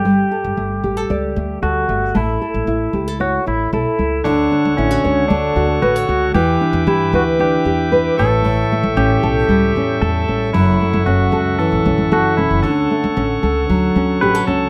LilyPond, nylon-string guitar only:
\new Staff \with { instrumentName = "Nylon-string guitar" } { \time 4/4 \key d \major \tempo 4 = 114 g8 a'8 a8 g'16 a'16 d''8 a8 a'8 a8 | a8 a'8 e'8 g'16 a'16 cis''8 e'8 a'8 e'8 | d8 d'8 e'16 fis'16 cis''8 a8 fis'8 b'16 cis''16 fis'8 | e8 d'8 g'8 b'8 d'8 g'8 b'8 a,8 |
a,8 a8 cis'8 a'8 g8 cis'8 a'8 cis'8 | fis,8 a8 cis'8 a'8 e8 cis'8 a'8 cis'8 | d8 a8 cis'8 a'8 fis8 cis'8 g'16 a'16 cis'8 | }